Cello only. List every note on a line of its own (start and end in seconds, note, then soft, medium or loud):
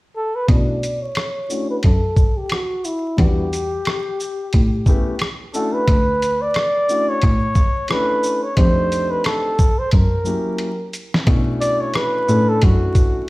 0.49 1.04 B2 medium
1.84 2.11 F#2 medium
3.19 3.73 E2 medium
4.54 4.81 A2 medium
5.88 6.43 D2 medium
7.23 7.51 A2 medium
8.57 9.12 F2 medium
9.93 10.20 F#2 medium
11.27 12.28 B2 loud
12.28 12.56 A2 medium
12.63 12.90 F#2 medium